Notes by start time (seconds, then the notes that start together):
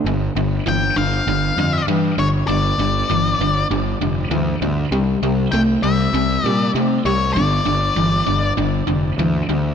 0.04 G1 G2 D3
0.35 G1 G2 D3
0.66 G1 G2 E3 G5
0.96 G1 G2 D3 F5
1.27 G1 G2 D3
1.57 F2 G2 D3
1.87 G2 E3
2.18 G1 G2 D3 C#5
2.48 G1 G2 D3 D5
2.78 G1 G2 D3
3.10 G1 G2 E3
3.39 G1 G2 D3
3.70 G1 G2 D3
4.01 F1 G2 D3
4.30 D2 G2 E3
4.61 D2 G2 D3
4.91 C2 C3 G3
5.22 C2 C3 G3
5.52 C2 C3 A3 G5
5.83 C2 C3 G3 E5
6.13 C2 C3 G3
6.44 A#2 C3 G3 D5
6.74 C3 A3
7.05 C2 C3 G3 C#5
7.33 G1 G2 D3 D5
7.66 G1 G2 D3
7.96 G1 G2 E3
8.27 G1 G2 D3
8.57 G1 G2 D3
8.87 F1 G2 D3
9.18 D2 G2 E3
9.49 D2 G2 D3